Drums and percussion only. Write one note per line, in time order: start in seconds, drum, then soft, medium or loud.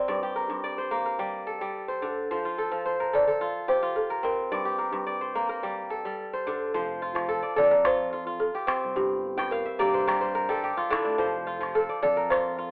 6.75 calabash thump medium
7.16 calabash click soft
7.57 calabash thump medium
7.57 calabash click soft
7.85 calabash click medium
8.28 calabash thump soft
8.55 calabash click soft
8.68 calabash click medium
8.97 calabash thump medium
9.39 calabash click soft
9.81 calabash thump medium
9.81 calabash click soft
10.09 calabash click medium
10.51 calabash thump soft
10.79 calabash click soft
10.93 calabash click medium
11.21 calabash thump soft
11.63 calabash click soft
12.04 calabash thump medium
12.04 calabash click soft
12.32 calabash click medium